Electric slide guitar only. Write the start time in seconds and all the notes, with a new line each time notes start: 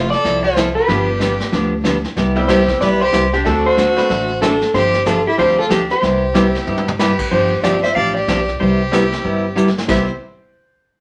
0.10 D5
0.43 C5
0.75 B4
2.48 C5
2.81 D5
3.01 C5
3.34 G4
3.46 A4
3.66 C5
4.42 A4
4.74 C5
5.07 A4
5.27 G4
5.39 C5
5.59 A4
5.72 G4
5.91 C5
6.99 B4
7.31 C5
7.64 D5
7.84 E5
7.95 F5
8.14 D5
8.60 C5
9.89 E5